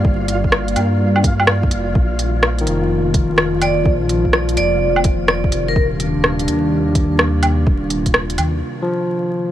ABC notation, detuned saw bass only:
X:1
M:4/4
L:1/16
Q:"Swing 16ths" 1/4=126
K:Bbmix
V:1 name="Detuned saw bass" clef=bass
G,,,3 G,,,3 G,,8 F,,,2 | B,,,6 F,,,8- F,,,2 | B,,,3 B,,,3 F,,,8- F,,,2 | E,,,3 E,,,3 E,,8- E,,2 |
E,,,3 E,,,3 E,,2 z8 |]